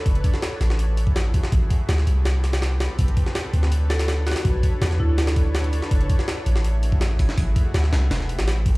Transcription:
<<
  \new Staff \with { instrumentName = "Marimba" } { \time 4/4 \key b \minor \tempo 4 = 164 r1 | r1 | r2 r8 a'8 r8 fis'8 | r4. e'16 e'16 r2 |
r1 | r1 | }
  \new Staff \with { instrumentName = "808-style bass" } { \clef bass \time 4/4 \key b \minor fis,,8 r4 a,,2~ a,,16 r16 | a,,8 r8 d,8 c,2~ c,16 r16 | b,,8 r4 d,2~ d,16 r16 | b,,8 r8 e,8 d,2~ d,16 r16 |
fis,,8 r4 a,,2~ a,,16 r16 | a,,8 r8 d,8 c,8 e,,8. a,,4 r16 | }
  \new DrumStaff \with { instrumentName = "Drums" } \drummode { \time 4/4 <hho bd>16 hh16 <hho bd>16 sn16 <hho sn>8 <hho sn>16 sn16 hho8 hho16 bd16 <hho sn>8 <hho bd>16 sn16 | <hho bd>8 <hho bd>8 <hho sn>16 sn16 hho8 <hho sn>8 <hho sn>16 <hho sn>16 <hho sn>8 <hho sn>8 | <hho bd>16 hh16 <hho bd>16 sn16 <hho sn>8 hho16 sn16 hho8 <hho sn>16 <hho sn>16 <hho sn>8 <hho sn>32 <hho sn>32 <hho sn>16 | <hho bd>8 <hho bd>8 <hho sn>16 sn8. <hho sn>16 <hho sn>16 <hho bd>8 <hho sn>16 hh16 hho16 sn16 |
<hho bd>16 hh16 <hho bd>16 sn16 <hho sn>8 hho16 sn16 hho8 hho16 bd16 <hho sn>8 <hho bd>16 sn16 | <hho bd>8 <hho bd>8 <hho sn>16 sn16 <hho sn>8 <hho sn>16 sn16 hho16 <hho sn>16 <hho sn>8 <hho bd>8 | }
>>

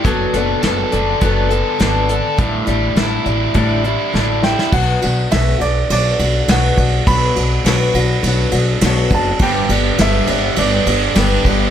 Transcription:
<<
  \new Staff \with { instrumentName = "Grand piano" } { \time 4/4 \key b \minor \tempo 4 = 103 r1 | r2. r8 g''8 | fis''4 e''8 d''8 d''4 fis''4 | b''2.~ b''8 a''8 |
g''4 e''4 d''2 | }
  \new Staff \with { instrumentName = "Overdriven electric guitar" } { \time 4/4 \key b \minor fis8 b8 a'8 d'8 b8 a'8 d'8 a'8 | a,8 g8 e'8 d'8 g8 e'8 d'8 e'8 | r1 | r1 |
g,8 b8 g8 b8 g'8 d'8 g'8 b8 | }
  \new Staff \with { instrumentName = "Steel-string acoustic guitar" } { \time 4/4 \key b \minor <fis b d' a'>8 <b d' a'>8 <fis b d' a'>8 <b d' a'>8 <fis b d' a'>8 <b d' a'>8 <fis b d' a'>8 <b d' a'>8 | <a, d g d' e'>8 <g d' e'>8 <d g d' e'>8 <g d' e'>8 <a, d g d' e'>8 <g d' e'>8 <d g d' e'>8 <g d' e'>8 | <b, fis b d' fis'>8 <b d' fis'>8 <b, fis b d' fis'>8 <b d' fis'>8 <fis b d' fis'>8 <b d' fis'>8 <b, fis b d' fis'>8 <b d' fis'>8 | <b, fis b d' fis'>8 <b d' fis'>8 <b, fis b d' fis'>8 <b d' fis'>8 <fis b d' fis'>8 <b d' fis'>8 <b, fis b d' fis'>8 <b d' fis'>8 |
<g, d g b d' g'>8 <g b d' g'>8 <g, d g b d' g'>8 <g b d' g'>8 <g b d' g'>8 <g b d' g'>8 <g, d g b d' g'>8 <g b d' g'>8 | }
  \new Staff \with { instrumentName = "Upright bass" } { \clef bass \time 4/4 \key b \minor fis,,8 fis,,8 fis,,8 fis,,8 fis,,4 gis,,4 | a,,8 a,,8 a,,8 a,,8 a,,4 a,,4 | b,,8 b,,8 b,,8 b,,8 b,,8 b,,8 b,,8 b,,8 | b,,8 b,,8 b,,8 b,,8 b,,8 b,,8 b,,8 fis,,8 |
g,,8 g,,8 g,,8 g,,8 g,,8 g,,8 g,,8 g,,8 | }
  \new DrumStaff \with { instrumentName = "Drums" } \drummode { \time 4/4 <hh bd>8 hh8 <hh sn>8 hh8 <hh bd>8 hh8 <hh sn>8 hh8 | <hh bd>8 hh8 <hh sn>8 hh8 <hh bd>8 hh8 sn8 sn16 sn16 | <cymc bd>8 cymr8 <cymr sn>8 cymr8 cymr8 cymr8 <cymr sn>8 <bd cymr>8 | <bd cymr>8 cymr8 <cymr sn>8 cymr8 cymr8 cymr8 <cymr sn>8 <bd cymr>8 |
<bd cymr>8 cymr8 <cymr sn>8 cymr8 cymr8 cymr8 <cymr sn>8 <bd cymr>8 | }
>>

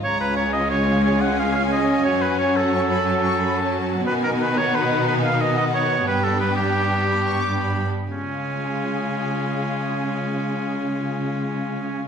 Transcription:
<<
  \new Staff \with { instrumentName = "Violin section" } { \time 12/8 \key des \mixolydian \tempo 4. = 119 bes''4. aes''1~ aes''8~ | aes''4. ges''8 des'''8 ces'''8 a''8 des'''8 ces'''8 a''4. | aes''4. ges''4. aes''4. ges''4. | g''2. b''8 des'''8 d'''8 b''8. r8. |
aes''1.~ | aes''1. | }
  \new Staff \with { instrumentName = "Oboe" } { \time 12/8 \key des \mixolydian des''8 ces''8 des''8 ees''8 des''4 des''8 ges''8 f''8 f''8 ees''4 | des''8 ces''8 des''8 a'1 r8 | ces''8 bes'8 ces''8 des''8 ces''4 ces''8 f''8 ees''8 ees''8 des''4 | b'8 a'8 b'8 g'1 r8 |
des'1.~ | des'1. | }
  \new Staff \with { instrumentName = "Violin section" } { \time 12/8 \key des \mixolydian << { f'1. | ges'1.~ | ges'1. | g'1~ g'4. r8 |
f'1.~ | f'1. | } \\ { des'1.~ | des'1. | ees'1. | d'1~ d'4. r8 |
r1. | r1. | } >> }
  \new Staff \with { instrumentName = "Viola section" } { \clef bass \time 12/8 \key des \mixolydian << { des'1.~ | des'1. | ces'1.~ | ces'1~ ces'4. r8 |
r1. | r1. | } \\ { aes1. | ges1. | ees1. | g1~ g4. r8 |
aes1.~ | aes1. | } >> }
  \new Staff \with { instrumentName = "Cello section" } { \clef bass \time 12/8 \key des \mixolydian des,1. | ges,1. | ces1. | g,1~ g,4. r8 |
des1.~ | des1. | }
>>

